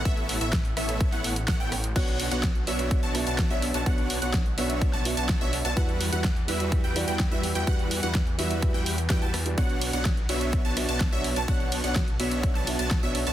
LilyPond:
<<
  \new Staff \with { instrumentName = "Synth pluck" } { \time 4/4 \key b \minor \tempo 4 = 126 e''8. e''16 r8 e''8. fis''8 r16 fis''16 g''16 r8 | fis''8. fis''16 r8 e''8. a''8 a''8 e''16 r16 a''16 | fis''8. fis''16 r8 e''8. a''8 a''8 e''16 r16 a''16 | fis''8. fis''16 r8 e''8. g''8 g''8 e''16 r16 g''16 |
fis''8. fis''16 r8 e''8. g''8 r16 g''16 a''16 r8 | fis''8. fis''16 r8 e''8. a''8 a''8 e''16 r16 a''16 | fis''8. fis''16 r8 e''8. a''8 a''8 e''16 r16 a''16 | }
  \new Staff \with { instrumentName = "Supersaw synth" } { \time 4/4 \key b \minor <e' a' cis'' e''>8. <b e' a' cis'' e''>16 r8 <b e' a' cis'' e''>8. <b e' a' cis'' fis''>8 r16 <b e' a' cis'' fis''>16 <b e' a' cis'' g''>16 r8 | <b d' fis' cis'' fis''>8. <b d' fis' cis'' fis''>16 r8 <b d' fis' cis'' e''>8. <b d' fis' cis'' a''>8 <b d' fis' cis'' a''>8 <b d' fis' cis'' e''>16 r16 <b d' fis' cis'' a''>16 | <b d' fis' cis'' fis''>8. <b d' fis' cis'' fis''>16 r8 <b d' fis' cis'' e''>8. <b d' fis' cis'' a''>8 <b d' fis' cis'' a''>8 <b d' fis' cis'' e''>16 r16 <b d' fis' cis'' a''>16 | <g e' fis' b' fis''>8. <g e' fis' b' fis''>16 r8 <g e' fis' b' e''>8. <g e' fis' b' g''>8 <g e' fis' b' g''>8 <g e' fis' b' e''>16 r16 <g e' fis' b' g''>16 |
<g fis' b' fis''>8. <g e' fis' b' fis''>16 r8 <g e' fis' b' e''>8. <g e' fis' b' g''>8 r16 <g e' fis' b' g''>16 <g e' fis' b' a''>16 r8 | <b d' fis' cis'' fis''>8. <b d' fis' cis'' fis''>16 r8 <b d' fis' cis'' e''>8. <b d' fis' cis'' a''>8 <b d' fis' cis'' a''>8 <b d' fis' cis'' e''>16 r16 <b d' fis' cis'' a''>16 | <b d' fis' cis'' fis''>8. <b d' fis' cis'' fis''>16 r8 <b d' fis' cis'' e''>8. <b d' fis' cis'' a''>8 <b d' fis' cis'' a''>8 <b d' fis' cis'' e''>16 r16 <b d' fis' cis'' a''>16 | }
  \new Staff \with { instrumentName = "Grand piano" } { \time 4/4 \key b \minor r1 | <b d' fis' cis''>8 r16 <b d' fis' cis''>16 r8 <b d' fis' cis''>4 <b d' fis' e''>8 r16 <b d' fis' cis''>8 r16 | <b d' fis' cis''>8 r16 <b d' fis' cis''>16 r8 <b d' fis' cis''>4 <b d' fis' e''>8 r16 <b d' fis' cis''>8 r16 | <g e' fis' b'>8 r16 <g e' fis' b'>16 r8 <g e' fis' b'>4 <g e' fis' d''>8 r16 <g e' fis' b'>8 r16 |
<g e' fis' b'>8 r16 <g e' fis' b'>16 r8 <g e' fis' b'>4 r8 <g e' fis' b'>16 r8 <g e' fis' b'>16 | <b d' fis' cis''>8 r16 <b d' fis' cis''>16 r8 <b d' fis' cis''>4 <b d' fis' e''>8 r16 <b d' fis' cis''>8 r16 | <b d' fis' cis''>8 r16 <b d' fis' cis''>16 r8 <b d' fis' cis''>4 <b d' fis' e''>8 r16 <b d' fis' cis''>8 r16 | }
  \new Staff \with { instrumentName = "Detuned saw bass" } { \clef bass \time 4/4 \key b \minor a,,8. a,,8. a,,8. a,,8. a,,16 a,,8. | b,,8. b,,8. b,,8. b,,8 b,,8 b,,8 b,,16 | b,,8. b,,8. b,,8. b,,8 b,,8 b,,8 b,,16 | e,8. e,8. e,8. e,8 e,8 e,8 e,16 |
e,8. e,8. e,8. e,8. e,16 e,8. | b,,8. b,,8. b,,8. b,,8 b,,8 b,,8 b,,16 | b,,8. b,,8. b,,8. b,,8 b,,8 b,,8 b,,16 | }
  \new DrumStaff \with { instrumentName = "Drums" } \drummode { \time 4/4 <hh bd>16 hh16 hho16 hh16 <hh bd sn>16 hh16 <hho ss>16 hh16 <hh bd>16 <hh sn>16 hho16 hh16 <hh bd sn>16 hh16 <hho ss>16 hh16 | <cymc hh bd>16 hh16 hho16 hh16 <hh bd sn>16 hh16 hho16 hh16 <hh bd>16 hh16 <hho ss>16 hh16 <hh bd sn>16 hh16 hho16 hh16 | <hh bd>16 hh16 hho16 hh16 <hh bd sn>16 hh16 hho16 hh16 <hh bd>16 <hh sn>16 hho16 hh16 <hh bd sn>16 hh16 hho16 hh16 | <hh bd>16 hh16 hho16 hh16 <hh bd sn>16 hh16 hho16 hh16 <hh bd>16 hh16 <hho ss>16 hh16 <hh bd sn>16 hh16 hho16 hh16 |
<hh bd>16 hh16 hho16 hh16 <hh bd sn>16 hh16 hho16 hh16 <hh bd>16 <hh sn>16 hho16 hh16 <hh bd sn>16 hh16 <hho ss>16 hh16 | <hh bd>16 hh16 <hho cymr>16 hh16 <hh bd sn>16 hh16 <hho cymr>16 hh16 <hh bd>16 hh16 <hho cymr ss>16 hh16 <hh bd sn>16 hh16 <hho cymr>16 hh16 | <hh bd>16 hh16 <hho cymr>16 hh16 <hh bd sn>16 hh16 <hho cymr>16 hh16 <hh bd>16 <hh sn>16 <hho cymr>16 hh16 <hh bd sn>16 hh16 <hho cymr>16 hh16 | }
>>